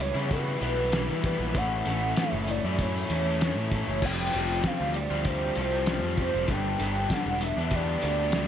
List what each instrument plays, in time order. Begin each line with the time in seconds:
Already playing: picked electric bass C#2, distorted electric guitar E2 B3
0.00 distorted electric guitar G3, analog synth lead C#5, muted overdriven electric guitar stroke, closed hi-hat
0.14 picked electric bass C#3, overdriven electric guitar G3 B3 E4
0.31 distorted electric guitar F#4, analog synth lead B4, kick, closed hi-hat
0.60 picked electric bass B1, overdriven electric guitar E3 G3 B3, closed hi-hat
0.65 overdriven electric guitar E4
0.75 overdriven electric guitar G3 B3 E4
0.92 overdriven electric guitar E3 G3 B3 E4, snare, closed hi-hat, tambourine
1.08 picked electric bass E3, overdriven electric guitar G3 B3 E4
1.23 overdriven electric guitar E3 G3 B3, analog synth lead B4, kick, closed hi-hat
1.27 overdriven electric guitar E4
1.38 picked electric bass A#1, overdriven electric guitar G3 B3 E4
1.54 picked electric bass A1, overdriven electric guitar A2 E3 A3 C#4, analog synth lead F#5, kick, closed hi-hat
1.58 overdriven electric guitar E4
1.85 picked electric bass A1, overdriven electric guitar E3 A3 C#4, closed hi-hat
1.90 overdriven electric guitar E4
2.16 overdriven electric guitar A2 E3 A3 C#4 E4, analog synth lead E5, snare, closed hi-hat, tambourine
2.31 picked electric bass F#1, overdriven electric guitar A3 C#4 E4
2.47 distorted electric guitar A3, analog synth lead D5, muted overdriven electric guitar stroke, closed hi-hat
2.64 picked electric bass F#2, overdriven electric guitar A3 C#4 E4
2.79 distorted electric guitar E4, analog synth lead C#5, kick, closed hi-hat
3.09 picked electric bass E2, overdriven electric guitar E3 A3 C#4 E4, closed hi-hat
3.26 overdriven electric guitar A3 C#4 E4
3.40 overdriven electric guitar A2, closed hi-hat, tambourine
3.41 overdriven electric guitar E3 A3 C#4 E4, snare, tambourine
3.57 picked electric bass A2, overdriven electric guitar A3 C#4 E4
3.72 overdriven electric guitar E3 A3 C#4 E4, kick, closed hi-hat
3.77 analog synth lead C#5
3.87 picked electric bass F#1, overdriven electric guitar C#4 E4
3.91 overdriven electric guitar A3
4.02 picked electric bass F1, overdriven electric guitar F3 G3 C4, analog synth lead G5, kick, crash
4.06 overdriven electric guitar F4
4.33 picked electric bass F1, overdriven electric guitar F3 G3 C4 F4, closed hi-hat
4.63 overdriven electric guitar F3 G3 C4 F4, kick, snare, closed hi-hat, tambourine
4.67 analog synth lead F5
4.80 picked electric bass D2, overdriven electric guitar G3 C4 F4
4.94 distorted electric guitar G3, analog synth lead D5, muted overdriven electric guitar stroke, closed hi-hat
5.11 picked electric bass D2, overdriven electric guitar G3 C4 F4
5.25 distorted electric guitar G4, analog synth lead C5, kick, closed hi-hat
5.55 picked electric bass C2, overdriven electric guitar F3 G3 C4, closed hi-hat
5.60 overdriven electric guitar F4
5.71 overdriven electric guitar G3 C4 F4
5.86 overdriven electric guitar F3 G3 C4 F4, snare, closed hi-hat, tambourine
6.03 picked electric bass F2, overdriven electric guitar G3 C4 F4
6.17 overdriven electric guitar F3 G3 C4 F4, analog synth lead C5, kick, closed hi-hat
6.34 picked electric bass F1, overdriven electric guitar G3 C4 F4
6.48 picked electric bass G1, overdriven electric guitar G2 D3 G3, kick, closed hi-hat
6.52 overdriven electric guitar B3 D4, analog synth lead G5
6.79 picked electric bass G1, overdriven electric guitar D3 G3, distorted electric guitar B3, closed hi-hat
6.83 overdriven electric guitar B3 D4
7.09 overdriven electric guitar G2 D3, distorted electric guitar D4, kick, snare, closed hi-hat, tambourine
7.13 overdriven electric guitar G3 B3 D4, analog synth lead F#5
7.26 picked electric bass E1, overdriven electric guitar G3 B3 D4
7.40 distorted electric guitar B3, analog synth lead E5, muted overdriven electric guitar stroke, closed hi-hat
7.57 picked electric bass E2, overdriven electric guitar G3 B3 D4
7.71 distorted electric guitar G4, kick, closed hi-hat
7.75 analog synth lead D5
8.02 picked electric bass D2, overdriven electric guitar D3 G3 B3, closed hi-hat
8.07 overdriven electric guitar D4
8.18 overdriven electric guitar G3 B3 D4
8.32 overdriven electric guitar G2 D3, snare, closed hi-hat, tambourine
8.34 overdriven electric guitar G3 B3 D4, tambourine